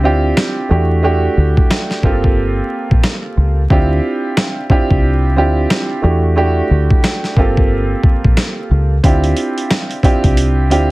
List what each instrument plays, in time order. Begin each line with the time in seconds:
0.03 fingered electric bass D2, upright piano C4 D4 E4 F4 G4
0.37 snare
0.69 fingered electric bass E2, upright piano A3 D4 E4 F#4 G4
1.02 upright piano A3 D4 E4 F#4 G4
1.37 fingered electric bass D2
1.57 kick
1.71 snare
1.91 snare
2.03 fingered electric bass G1, upright piano A#3 C4 F4 G4 A4, kick
2.24 kick
2.91 fingered electric bass A#1, kick
3.04 snare
3.37 fingered electric bass C#2
3.70 fingered electric bass D2, upright piano C4 D4 E4 F4 G4, kick
4.37 snare
4.70 upright piano C4 D4 E4 F4 G4, kick
4.91 fingered electric bass C2, kick
5.36 fingered electric bass D2, upright piano C4 D4 E4 F4 G4
5.70 snare
6.02 fingered electric bass E2, upright piano A3 D4 E4 F#4 G4
6.36 upright piano A3 D4 E4 F#4 G4
6.71 fingered electric bass D2
6.91 kick
7.04 snare
7.24 snare
7.37 fingered electric bass G1, upright piano A#3 C4 F4 G4 A4, kick
7.57 kick
8.04 kick
8.25 fingered electric bass A#1, kick
8.37 snare
8.71 fingered electric bass C#2
9.03 fingered electric bass D2, upright piano C4 D4 E4 F4 G4, kick, closed hi-hat
9.24 closed hi-hat
9.37 closed hi-hat
9.58 closed hi-hat
9.71 snare, closed hi-hat
9.91 closed hi-hat
10.03 upright piano C4 D4 E4 F4 G4, kick, closed hi-hat
10.24 fingered electric bass C2, kick, closed hi-hat
10.37 closed hi-hat
10.70 fingered electric bass D2, upright piano C4 D4 E4 F4 G4, closed hi-hat